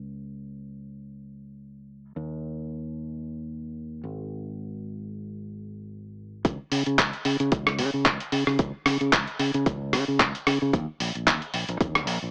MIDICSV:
0, 0, Header, 1, 3, 480
1, 0, Start_track
1, 0, Tempo, 535714
1, 18, Time_signature, 4, 2, 24, 8
1, 11028, End_track
2, 0, Start_track
2, 0, Title_t, "Fingered electric bass"
2, 0, Program_c, 0, 33
2, 0, Note_on_c, 0, 37, 76
2, 1917, Note_off_c, 0, 37, 0
2, 1937, Note_on_c, 0, 39, 76
2, 3596, Note_off_c, 0, 39, 0
2, 3616, Note_on_c, 0, 32, 85
2, 5756, Note_off_c, 0, 32, 0
2, 5777, Note_on_c, 0, 37, 95
2, 5881, Note_off_c, 0, 37, 0
2, 6017, Note_on_c, 0, 49, 97
2, 6121, Note_off_c, 0, 49, 0
2, 6150, Note_on_c, 0, 49, 84
2, 6233, Note_off_c, 0, 49, 0
2, 6258, Note_on_c, 0, 37, 78
2, 6361, Note_off_c, 0, 37, 0
2, 6497, Note_on_c, 0, 49, 83
2, 6600, Note_off_c, 0, 49, 0
2, 6630, Note_on_c, 0, 49, 105
2, 6713, Note_off_c, 0, 49, 0
2, 6738, Note_on_c, 0, 37, 95
2, 6977, Note_on_c, 0, 49, 96
2, 6991, Note_off_c, 0, 37, 0
2, 7081, Note_off_c, 0, 49, 0
2, 7111, Note_on_c, 0, 49, 86
2, 7218, Note_on_c, 0, 37, 88
2, 7232, Note_off_c, 0, 49, 0
2, 7321, Note_off_c, 0, 37, 0
2, 7456, Note_on_c, 0, 49, 95
2, 7560, Note_off_c, 0, 49, 0
2, 7591, Note_on_c, 0, 49, 98
2, 7673, Note_off_c, 0, 49, 0
2, 7699, Note_on_c, 0, 37, 96
2, 7801, Note_off_c, 0, 37, 0
2, 7937, Note_on_c, 0, 49, 92
2, 8040, Note_off_c, 0, 49, 0
2, 8070, Note_on_c, 0, 49, 82
2, 8153, Note_off_c, 0, 49, 0
2, 8177, Note_on_c, 0, 37, 85
2, 8281, Note_off_c, 0, 37, 0
2, 8417, Note_on_c, 0, 49, 85
2, 8520, Note_off_c, 0, 49, 0
2, 8551, Note_on_c, 0, 49, 100
2, 8634, Note_off_c, 0, 49, 0
2, 8658, Note_on_c, 0, 37, 100
2, 8898, Note_on_c, 0, 49, 100
2, 8912, Note_off_c, 0, 37, 0
2, 9001, Note_off_c, 0, 49, 0
2, 9033, Note_on_c, 0, 49, 85
2, 9138, Note_on_c, 0, 37, 90
2, 9152, Note_off_c, 0, 49, 0
2, 9241, Note_off_c, 0, 37, 0
2, 9379, Note_on_c, 0, 49, 89
2, 9481, Note_off_c, 0, 49, 0
2, 9514, Note_on_c, 0, 49, 102
2, 9595, Note_off_c, 0, 49, 0
2, 9619, Note_on_c, 0, 39, 101
2, 9721, Note_off_c, 0, 39, 0
2, 9859, Note_on_c, 0, 34, 103
2, 9961, Note_off_c, 0, 34, 0
2, 9993, Note_on_c, 0, 34, 84
2, 10074, Note_off_c, 0, 34, 0
2, 10098, Note_on_c, 0, 39, 80
2, 10201, Note_off_c, 0, 39, 0
2, 10339, Note_on_c, 0, 34, 81
2, 10441, Note_off_c, 0, 34, 0
2, 10470, Note_on_c, 0, 34, 109
2, 10553, Note_off_c, 0, 34, 0
2, 10578, Note_on_c, 0, 39, 94
2, 10817, Note_off_c, 0, 39, 0
2, 10817, Note_on_c, 0, 34, 95
2, 10921, Note_off_c, 0, 34, 0
2, 10952, Note_on_c, 0, 34, 87
2, 11028, Note_off_c, 0, 34, 0
2, 11028, End_track
3, 0, Start_track
3, 0, Title_t, "Drums"
3, 5778, Note_on_c, 9, 36, 121
3, 5778, Note_on_c, 9, 42, 79
3, 5867, Note_off_c, 9, 36, 0
3, 5867, Note_off_c, 9, 42, 0
3, 6018, Note_on_c, 9, 46, 104
3, 6107, Note_off_c, 9, 46, 0
3, 6150, Note_on_c, 9, 42, 38
3, 6240, Note_off_c, 9, 42, 0
3, 6258, Note_on_c, 9, 36, 118
3, 6258, Note_on_c, 9, 42, 82
3, 6261, Note_on_c, 9, 39, 119
3, 6348, Note_off_c, 9, 36, 0
3, 6348, Note_off_c, 9, 42, 0
3, 6350, Note_off_c, 9, 39, 0
3, 6392, Note_on_c, 9, 42, 36
3, 6481, Note_off_c, 9, 42, 0
3, 6496, Note_on_c, 9, 46, 106
3, 6586, Note_off_c, 9, 46, 0
3, 6630, Note_on_c, 9, 42, 57
3, 6719, Note_off_c, 9, 42, 0
3, 6736, Note_on_c, 9, 42, 87
3, 6738, Note_on_c, 9, 36, 127
3, 6826, Note_off_c, 9, 42, 0
3, 6828, Note_off_c, 9, 36, 0
3, 6869, Note_on_c, 9, 37, 82
3, 6959, Note_off_c, 9, 37, 0
3, 6976, Note_on_c, 9, 46, 111
3, 7066, Note_off_c, 9, 46, 0
3, 7216, Note_on_c, 9, 42, 75
3, 7218, Note_on_c, 9, 36, 111
3, 7219, Note_on_c, 9, 39, 114
3, 7306, Note_off_c, 9, 42, 0
3, 7308, Note_off_c, 9, 36, 0
3, 7309, Note_off_c, 9, 39, 0
3, 7351, Note_on_c, 9, 42, 58
3, 7441, Note_off_c, 9, 42, 0
3, 7457, Note_on_c, 9, 46, 105
3, 7547, Note_off_c, 9, 46, 0
3, 7590, Note_on_c, 9, 37, 60
3, 7680, Note_off_c, 9, 37, 0
3, 7696, Note_on_c, 9, 42, 77
3, 7698, Note_on_c, 9, 36, 127
3, 7786, Note_off_c, 9, 42, 0
3, 7788, Note_off_c, 9, 36, 0
3, 7936, Note_on_c, 9, 37, 80
3, 7936, Note_on_c, 9, 46, 106
3, 8026, Note_off_c, 9, 37, 0
3, 8026, Note_off_c, 9, 46, 0
3, 8072, Note_on_c, 9, 42, 37
3, 8162, Note_off_c, 9, 42, 0
3, 8176, Note_on_c, 9, 42, 80
3, 8178, Note_on_c, 9, 36, 122
3, 8179, Note_on_c, 9, 39, 127
3, 8266, Note_off_c, 9, 42, 0
3, 8268, Note_off_c, 9, 36, 0
3, 8269, Note_off_c, 9, 39, 0
3, 8310, Note_on_c, 9, 42, 36
3, 8400, Note_off_c, 9, 42, 0
3, 8418, Note_on_c, 9, 46, 116
3, 8507, Note_off_c, 9, 46, 0
3, 8551, Note_on_c, 9, 42, 50
3, 8640, Note_off_c, 9, 42, 0
3, 8657, Note_on_c, 9, 42, 81
3, 8658, Note_on_c, 9, 36, 127
3, 8747, Note_off_c, 9, 42, 0
3, 8748, Note_off_c, 9, 36, 0
3, 8898, Note_on_c, 9, 37, 66
3, 8898, Note_on_c, 9, 46, 111
3, 8988, Note_off_c, 9, 37, 0
3, 8988, Note_off_c, 9, 46, 0
3, 9138, Note_on_c, 9, 36, 112
3, 9138, Note_on_c, 9, 42, 76
3, 9141, Note_on_c, 9, 39, 117
3, 9228, Note_off_c, 9, 36, 0
3, 9228, Note_off_c, 9, 42, 0
3, 9230, Note_off_c, 9, 39, 0
3, 9274, Note_on_c, 9, 42, 57
3, 9363, Note_off_c, 9, 42, 0
3, 9379, Note_on_c, 9, 37, 73
3, 9379, Note_on_c, 9, 46, 110
3, 9469, Note_off_c, 9, 37, 0
3, 9469, Note_off_c, 9, 46, 0
3, 9618, Note_on_c, 9, 36, 121
3, 9618, Note_on_c, 9, 42, 77
3, 9708, Note_off_c, 9, 36, 0
3, 9708, Note_off_c, 9, 42, 0
3, 9859, Note_on_c, 9, 46, 116
3, 9948, Note_off_c, 9, 46, 0
3, 9994, Note_on_c, 9, 42, 36
3, 10083, Note_off_c, 9, 42, 0
3, 10098, Note_on_c, 9, 36, 125
3, 10099, Note_on_c, 9, 42, 80
3, 10101, Note_on_c, 9, 39, 125
3, 10188, Note_off_c, 9, 36, 0
3, 10188, Note_off_c, 9, 42, 0
3, 10191, Note_off_c, 9, 39, 0
3, 10232, Note_on_c, 9, 42, 35
3, 10321, Note_off_c, 9, 42, 0
3, 10337, Note_on_c, 9, 46, 108
3, 10426, Note_off_c, 9, 46, 0
3, 10471, Note_on_c, 9, 42, 50
3, 10560, Note_off_c, 9, 42, 0
3, 10578, Note_on_c, 9, 36, 127
3, 10578, Note_on_c, 9, 42, 77
3, 10668, Note_off_c, 9, 36, 0
3, 10668, Note_off_c, 9, 42, 0
3, 10710, Note_on_c, 9, 37, 86
3, 10800, Note_off_c, 9, 37, 0
3, 10816, Note_on_c, 9, 46, 114
3, 10906, Note_off_c, 9, 46, 0
3, 11028, End_track
0, 0, End_of_file